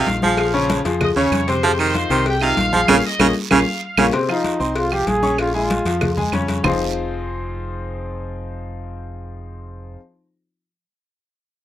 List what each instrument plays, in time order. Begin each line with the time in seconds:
Already playing: grand piano D#3 D#4 F4, trumpet section F5
0.07 fingered electric bass A#1, cowbell, high conga, short guiro
0.22 grand piano F3 F4 G#4, baritone saxophone F3, trumpet section F5, high conga, short guiro
0.37 trumpet section F5, cowbell, high conga, long guiro, claves
0.53 grand piano C#3 C#4 C#5, high conga
0.70 cowbell, high conga, short guiro
0.85 fingered electric bass F2, grand piano F3 F4 G#4, cowbell, high conga, short guiro
1.01 trumpet section D#5 D#6, cowbell, high conga, low conga, long guiro, claves
1.16 fingered electric bass D#2, baritone saxophone C#3, grand piano C#3 C#4 C#5, trumpet section C#5 C#6, high conga
1.31 fingered electric bass F2, cowbell, high conga, short guiro, claves
1.48 grand piano C3 C4 C5, trumpet section C5 C6, cowbell, short guiro
1.63 grand piano C3 C4 C5, baritone saxophone F3, cowbell, high conga, long guiro
1.79 baritone saxophone D#3, trumpet section C5 C6, high conga, claves
1.94 grand piano D#3 D#4 F4, cowbell, high conga, short guiro
2.10 fingered electric bass C2, grand piano C3 C4 C5, baritone saxophone D#3, high conga, short guiro
2.26 trumpet section G4 G5, cowbell, high conga, long guiro
2.41 baritone saxophone C3, grand piano D#3 D#4 F4, trumpet section F5, high conga, claves
2.57 fingered electric bass A#1, cowbell, high conga, short guiro
2.73 grand piano F3 F4 G#4, baritone saxophone F3, trumpet section F5, high conga, short guiro
2.88 fingered electric bass A#1, baritone saxophone C#3, grand piano A#3 C#4 F4, cowbell, high conga, long guiro, claves
3.06 trumpet section D#5 D#6
3.19 fingered electric bass A#1, baritone saxophone C#3, grand piano A#3 C#4 F4, cowbell, high conga, long guiro, claves
3.51 fingered electric bass A#1, baritone saxophone C#3, grand piano A#3 C#4 F4, trumpet section F5, cowbell, high conga, claves
3.83 trumpet section F5
3.97 fingered electric bass A#1, baritone saxophone C#3, grand piano A#3 C#4 F4, cowbell, high conga, long guiro, claves
4.13 grand piano C3 C4 C5, cowbell, high conga, long guiro
4.28 grand piano F3 F4 F5, trombone D#4, high conga, claves
4.44 cowbell, high conga, short guiro
4.59 fingered electric bass C2, grand piano C4 C5 C6, high conga, short guiro
4.76 trombone F4, cowbell, high conga, long guiro
4.92 grand piano F3 F4 F5, trombone G4, high conga, claves
5.07 fingered electric bass A#1, trombone G#4, cowbell, high conga, short guiro
5.23 grand piano C#4 C#5 C#6, high conga, short guiro
5.38 trombone F4, cowbell, high conga, long guiro, claves
5.54 grand piano G#3 G#4 G#5, trombone F4, high conga
5.70 cowbell, high conga, short guiro
5.85 fingered electric bass F2, grand piano F3 F4 F5, cowbell, high conga, short guiro
6.01 cowbell, high conga, low conga, long guiro, claves
6.17 grand piano G#3 G#4 G#5, high conga, low conga
6.32 fingered electric bass F2, grand piano C#3 C#4 C#5, cowbell, high conga, short guiro, claves
6.48 cowbell, high conga, short guiro
6.63 fingered electric bass F1, grand piano F3 C4 D#4 F4 G#4 C5, low bongo, low conga, long guiro, claves